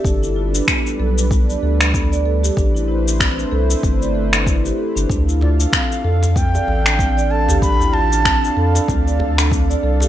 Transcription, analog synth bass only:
X:1
M:4/4
L:1/16
Q:"Swing 16ths" 1/4=95
K:Ddor
V:1 name="Analog synth bass" clef=bass
G,,,4 z2 B,,,4 D,,6 | A,,,6 C,, z G,,,6 z G,,, | D,,4 z2 F,,4 A,,,6- | A,,,6 F,, z D,,6 C,, z |]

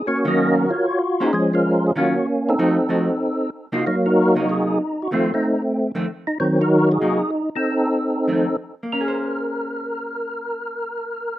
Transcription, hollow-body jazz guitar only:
X:1
M:4/4
L:1/8
Q:"Swing" 1/4=190
K:Bbm
V:1 name="Hollow-body jazz guitar"
z [E,G,D]3 z3 [B,DAc] | z4 [E,G,DF] z3 | [F,=A,EG] z [F,A,EG] z4 [C,B,EG] | z3 [C,G,B,E]3 z2 |
[F,,E,=A,C] z4 [F,,E,A,C] z2 | z4 [C,G,B,E] z3 | z4 [F,,E,=A,C] z3 | [B,DAc]8- |
[B,DAc]8 |]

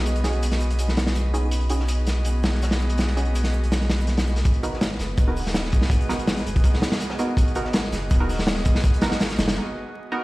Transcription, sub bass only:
X:1
M:4/4
L:1/8
Q:1/4=164
K:G#m
V:1 name="Sub bass" clef=bass
B,,,8- | B,,,8- | B,,,8 | G,,,3 F,,, D,,,3 G,,, |
G,,,3 F,,, z4 | G,,,3 F,,, D,,,3 G,,, | G,,,3 F,,, z4 |]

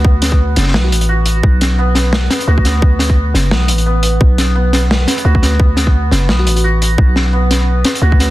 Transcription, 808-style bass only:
X:1
M:4/4
L:1/8
Q:"Swing 16ths" 1/4=173
K:Bm
V:1 name="808-style bass" clef=bass
D,,3 F,,, B,,, A,,,3 | B,,,4- B,,, z D,,2- | D,,3 F,,, B,,, A,,,3 | B,,,4- B,,, z D,,2- |
D,,3 F,,, B,,, A,,,3 | B,,,4- B,,, z D,,2 |]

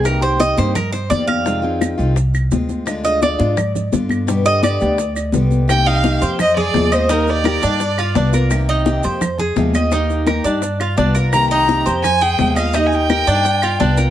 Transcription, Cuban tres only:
X:1
M:4/4
L:1/8
Q:1/4=170
K:Cm
V:1 name="Cuban tres"
B c e c B c d f- | f4 z4 | z e d3 z3 | z e d3 z3 |
z E2 c2 A2 e | E2 B D2 F D B- | B E2 c2 A2 e | E2 B D2 F D B- |
B E2 c2 A2 e | E2 B D2 F D B |]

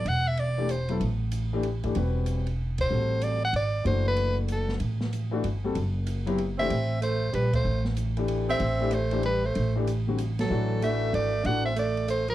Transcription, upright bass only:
X:1
M:3/4
L:1/8
Q:"Swing" 1/4=190
K:Ador
V:1 name="Upright bass" clef=bass
E,,,6 | A,,,4- A,,, ^G,,, | E,,,6 | A,,,4 ^G,,,2 |
F,,,6 | A,,,4 G,,,2 | F,,,6 | A,,,4 _B,,,2 |
A,,,6 | A,,,6 | A,,,6 | A,,,4 ^G,,,2 |
A,,,6 |]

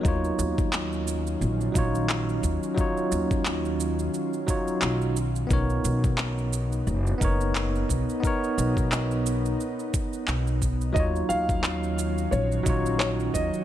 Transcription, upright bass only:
X:1
M:4/4
L:1/8
Q:"Swing 16ths" 1/4=88
K:Ebm
V:1 name="Upright bass" clef=bass
E,, E,,3 B,,, B,,,2 E,, | z E,,3 z2 C,,2 | =B,,, B,,,3 ^F,,, F,,,2 B,,, | z =B,,,3 z2 B,,,2 |
E,, E,,3 B,,, B,,,2 E,, |]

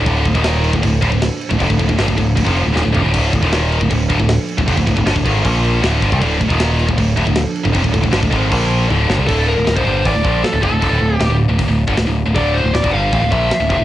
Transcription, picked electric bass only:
X:1
M:4/4
L:1/16
Q:1/4=156
K:Dm
V:1 name="Picked electric bass" clef=bass
D,,,2 D,,, _E,,,4 D,,, D,,,2 D,,, D,,,2 z2 D,,, | F,,, D,,, D,,, D,,, G,,, D,,, D,,,2 D,,, F,,,2 D,,, _E,,, D,,, F,,, D,,, | D,,,2 D,,, _E,,,4 D,,, D,,,2 D,,, D,,,2 z2 D,,, | F,,, D,,, D,,, D,,, G,,, D,,, ^G,,,2 B,,,4 D,,,2 =G,,, C,, |
D,,,2 D,,, _E,,,4 D,,, D,,,2 D,,, D,,,2 z2 D,,, | F,,, D,,, D,,, D,,, G,,, D,,, ^G,,,2 B,,,4 D,,,2 =G,,, C,, | D,,,3 D,,, D,,, _E,,, G,,,2 A,,, D,,, B,,,2 z D,,, F,,, D,,, | _E,,, D,,, D,,,2 D,,, D,,,2 D,,, D,,, D,,,2 G,,, D,,, D,,,2 D,,, |
D,,,3 D,,, D,,, _E,,, G,,,2 A,,, D,,, B,,,2 z D,,, F,,, D,,, |]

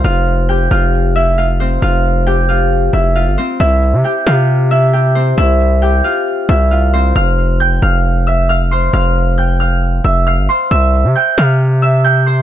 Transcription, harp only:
X:1
M:4/4
L:1/8
Q:1/4=135
K:Cphr
V:1 name="Harp"
[Ff]2 [Gg] [Ff]2 [=E=e] [Ff] [Cc] | [Ff]2 [Gg] [Ff]2 [=E=e] [Ff] [Cc] | [=E=e]2 [Gg] [Ff]2 [Ee] [Gg] [Cc] | [=E=e]2 [Gg] [Ff]2 [Ee] [Ff] [Cc] |
[ff']2 [gg'] [ff']2 [=e=e'] [ff'] [cc'] | [ff']2 [gg'] [ff']2 [=e=e'] [ff'] [cc'] | [=e=e']2 [gg'] [ff']2 [ee'] [gg'] [cc'] |]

